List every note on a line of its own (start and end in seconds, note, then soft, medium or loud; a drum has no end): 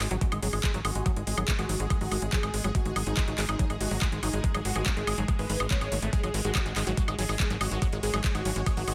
0.00 0.08 G#1 loud
0.00 8.94 G#3 medium
0.00 0.09 G#3 medium
0.00 6.15 G#4 medium
0.00 clap medium
0.00 open hi-hat loud
0.00 high woodblock soft
0.11 0.18 G#1 medium
0.11 0.17 F#3 loud
0.11 0.30 F#4 medium
0.11 closed hi-hat medium
0.21 0.27 G#3 medium
0.21 kick loud
0.21 closed hi-hat medium
0.32 0.39 G#1 medium
0.32 0.41 G#3 medium
0.32 closed hi-hat medium
0.32 high woodblock medium
0.42 0.50 G#1 loud
0.42 0.48 F#3 loud
0.42 0.68 G#4 loud
0.42 open hi-hat loud
0.53 0.60 G#1 medium
0.53 0.59 G#3 medium
0.53 open hi-hat medium
0.53 high woodblock soft
0.64 0.72 G#3 medium
0.64 kick loud
0.64 clap loud
0.64 closed hi-hat loud
0.74 0.82 G#1 medium
0.74 0.80 F#3 loud
0.74 closed hi-hat medium
0.85 0.92 G#1 loud
0.85 0.90 G#3 medium
0.85 1.11 F#4 loud
0.85 open hi-hat loud
0.85 high woodblock medium
0.95 1.03 G#1 medium
0.95 1.04 G#3 medium
0.95 closed hi-hat medium
1.06 1.12 F#3 loud
1.06 kick loud
1.06 closed hi-hat medium
1.06 high woodblock soft
1.16 1.24 G#1 medium
1.16 1.22 G#3 medium
1.16 closed hi-hat medium
1.27 1.34 G#1 loud
1.27 1.36 G#3 medium
1.27 1.46 G#4 loud
1.27 open hi-hat loud
1.38 1.45 G#1 loud
1.38 1.43 F#3 loud
1.38 high woodblock medium
1.48 1.54 G#3 medium
1.48 kick loud
1.48 clap loud
1.48 closed hi-hat loud
1.59 1.66 G#1 medium
1.59 1.67 G#3 medium
1.59 1.85 F#4 loud
1.59 closed hi-hat medium
1.59 high woodblock soft
1.69 1.77 G#1 loud
1.69 1.75 F#3 loud
1.69 open hi-hat loud
1.80 1.87 G#1 loud
1.80 1.86 G#3 medium
1.80 closed hi-hat medium
1.90 1.99 G#3 medium
1.90 kick loud
1.90 closed hi-hat medium
1.90 high woodblock medium
2.01 2.08 G#1 medium
2.01 2.07 F#3 loud
2.01 2.20 F#4 medium
2.01 open hi-hat medium
2.11 2.19 G#1 loud
2.11 2.17 G#3 medium
2.11 open hi-hat loud
2.11 high woodblock soft
2.22 2.29 G#1 medium
2.22 2.31 G#3 medium
2.22 closed hi-hat medium
2.33 2.38 F#3 loud
2.33 2.59 G#4 loud
2.33 kick loud
2.33 clap loud
2.33 closed hi-hat loud
2.43 2.51 G#1 medium
2.43 2.49 G#3 medium
2.43 closed hi-hat medium
2.43 high woodblock medium
2.54 2.61 G#1 loud
2.54 2.62 G#3 medium
2.54 open hi-hat loud
2.64 2.72 G#1 medium
2.64 2.70 F#3 loud
2.64 closed hi-hat medium
2.64 high woodblock soft
2.75 2.81 G#3 medium
2.75 2.94 F#4 loud
2.75 kick loud
2.75 closed hi-hat medium
2.85 2.93 G#1 medium
2.85 2.94 G#3 medium
2.85 closed hi-hat medium
2.96 3.03 G#1 loud
2.96 3.02 F#3 loud
2.96 open hi-hat loud
2.96 high woodblock medium
3.07 3.14 G#1 loud
3.07 3.12 G#3 medium
3.07 3.33 D#4 loud
3.07 closed hi-hat medium
3.17 3.26 G#3 medium
3.17 kick loud
3.17 clap loud
3.17 closed hi-hat loud
3.17 high woodblock soft
3.28 3.35 G#1 medium
3.28 3.33 F#3 loud
3.28 closed hi-hat medium
3.38 3.46 G#1 loud
3.38 3.44 G#3 medium
3.38 clap medium
3.38 open hi-hat loud
3.49 3.56 G#1 medium
3.49 3.57 G#3 medium
3.49 3.68 D#4 loud
3.49 closed hi-hat medium
3.49 high woodblock medium
3.59 3.65 F#3 loud
3.59 kick loud
3.59 closed hi-hat medium
3.70 3.77 G#1 medium
3.70 3.76 G#3 medium
3.70 closed hi-hat medium
3.70 high woodblock soft
3.81 3.88 G#1 loud
3.81 3.89 G#3 medium
3.81 4.06 F#4 medium
3.81 open hi-hat loud
3.91 3.98 G#1 medium
3.91 3.97 F#3 loud
3.91 open hi-hat medium
4.02 4.07 G#3 medium
4.02 kick loud
4.02 clap loud
4.02 high woodblock medium
4.12 4.20 G#1 medium
4.12 4.21 G#3 medium
4.12 closed hi-hat medium
4.23 4.30 G#1 loud
4.23 4.29 F#3 loud
4.23 4.49 D#4 medium
4.23 open hi-hat loud
4.23 high woodblock soft
4.33 4.41 G#1 medium
4.33 4.39 G#3 medium
4.33 closed hi-hat medium
4.44 4.53 G#3 medium
4.44 kick loud
4.44 closed hi-hat medium
4.54 4.62 G#1 medium
4.54 4.60 F#3 loud
4.54 closed hi-hat medium
4.54 high woodblock medium
4.65 4.72 G#1 loud
4.65 4.71 G#3 medium
4.65 4.84 F#4 loud
4.65 open hi-hat loud
4.76 4.83 G#1 loud
4.76 4.84 G#3 medium
4.76 closed hi-hat medium
4.76 high woodblock soft
4.86 4.92 F#3 loud
4.86 kick loud
4.86 clap loud
4.86 closed hi-hat medium
4.97 5.04 G#1 medium
4.97 5.02 G#3 medium
4.97 5.23 G#4 loud
4.97 closed hi-hat soft
5.07 5.15 G#1 loud
5.07 5.16 G#3 medium
5.07 open hi-hat loud
5.07 high woodblock medium
5.18 5.25 G#1 medium
5.18 5.24 F#3 loud
5.18 closed hi-hat medium
5.28 5.34 G#3 medium
5.28 kick loud
5.28 closed hi-hat medium
5.28 high woodblock soft
5.39 5.46 G#1 medium
5.39 5.48 G#3 medium
5.39 5.58 B4 medium
5.39 open hi-hat medium
5.50 5.57 G#1 loud
5.50 5.53 G#3 medium
5.50 open hi-hat loud
5.60 5.67 G#1 medium
5.60 5.64 G#3 medium
5.60 high woodblock medium
5.71 5.76 B3 medium
5.71 5.97 C#5 loud
5.71 kick loud
5.71 clap loud
5.71 closed hi-hat medium
5.81 5.89 G#1 medium
5.81 5.90 G#3 medium
5.81 closed hi-hat medium
5.81 high woodblock soft
5.92 5.99 G#1 loud
5.92 5.95 A3 loud
5.92 open hi-hat loud
6.02 6.10 G#1 medium
6.02 6.11 A3 loud
6.02 closed hi-hat medium
6.13 6.22 G#3 medium
6.13 6.32 G#4 loud
6.13 8.94 C#5 medium
6.13 kick loud
6.13 closed hi-hat medium
6.23 6.31 G#1 medium
6.23 6.29 F#3 loud
6.23 closed hi-hat medium
6.23 high woodblock soft
6.34 6.41 G#1 loud
6.34 6.40 G#3 medium
6.34 open hi-hat loud
6.45 6.52 G#1 loud
6.45 6.53 G#3 medium
6.45 6.71 F#4 loud
6.45 closed hi-hat medium
6.55 6.61 F#3 loud
6.55 kick loud
6.55 clap loud
6.55 closed hi-hat medium
6.55 high woodblock medium
6.66 6.73 G#1 medium
6.66 6.71 G#3 medium
6.66 closed hi-hat soft
6.76 6.84 G#1 loud
6.76 6.85 G#3 medium
6.76 clap medium
6.76 open hi-hat loud
6.76 high woodblock soft
6.87 6.94 G#1 medium
6.87 6.93 F#3 loud
6.87 7.06 F#4 loud
6.87 closed hi-hat medium
6.97 7.03 G#3 medium
6.97 kick loud
6.97 closed hi-hat medium
7.08 7.15 G#1 medium
7.08 7.17 G#3 medium
7.08 closed hi-hat soft
7.08 high woodblock medium
7.18 7.26 G#1 loud
7.18 7.24 F#3 loud
7.18 7.44 G#4 loud
7.18 open hi-hat loud
7.29 7.37 G#1 medium
7.29 7.35 G#3 medium
7.29 open hi-hat medium
7.29 high woodblock soft
7.40 7.48 G#3 medium
7.40 kick loud
7.40 clap loud
7.40 closed hi-hat medium
7.50 7.58 G#1 medium
7.50 7.56 F#3 loud
7.50 closed hi-hat medium
7.61 7.68 G#1 medium
7.61 7.67 G#3 medium
7.61 7.87 F#4 medium
7.61 open hi-hat loud
7.61 high woodblock medium
7.71 7.79 G#1 medium
7.71 7.80 G#3 medium
7.71 closed hi-hat medium
7.82 7.88 F#3 loud
7.82 kick loud
7.82 closed hi-hat medium
7.82 high woodblock soft
7.92 8.00 G#1 medium
7.92 7.98 G#3 medium
7.92 closed hi-hat medium
8.03 8.10 G#1 loud
8.03 8.12 G#3 medium
8.03 8.22 G#4 loud
8.03 open hi-hat loud
8.14 8.21 G#1 loud
8.14 8.19 F#3 loud
8.14 closed hi-hat medium
8.14 high woodblock medium
8.24 8.30 G#3 medium
8.24 kick loud
8.24 clap loud
8.24 closed hi-hat medium
8.35 8.42 G#1 medium
8.35 8.43 G#3 medium
8.35 8.61 F#4 loud
8.35 closed hi-hat medium
8.35 high woodblock soft
8.45 8.53 G#1 loud
8.45 8.51 F#3 loud
8.45 open hi-hat loud
8.56 8.63 G#1 medium
8.56 8.62 G#3 medium
8.56 closed hi-hat medium
8.66 8.75 G#3 medium
8.66 kick loud
8.66 closed hi-hat medium
8.66 high woodblock medium
8.77 8.84 G#1 medium
8.77 8.83 F#3 loud
8.77 8.94 F#4 medium
8.77 open hi-hat medium
8.88 8.94 G#1 loud
8.88 8.93 G#3 medium
8.88 open hi-hat loud
8.88 high woodblock soft